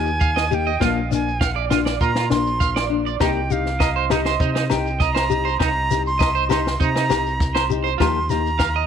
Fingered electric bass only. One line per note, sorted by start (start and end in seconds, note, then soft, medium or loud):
0.00 0.77 D#2 medium
0.81 1.97 A#1 loud
2.01 2.31 A#2 medium
2.30 3.16 A#1 medium
3.21 4.36 C2 loud
4.40 4.72 C3 loud
4.71 5.56 C2 medium
5.60 6.76 C2 loud
6.81 7.12 C3 loud
7.10 7.96 C2 loud
8.00 8.87 D#2 loud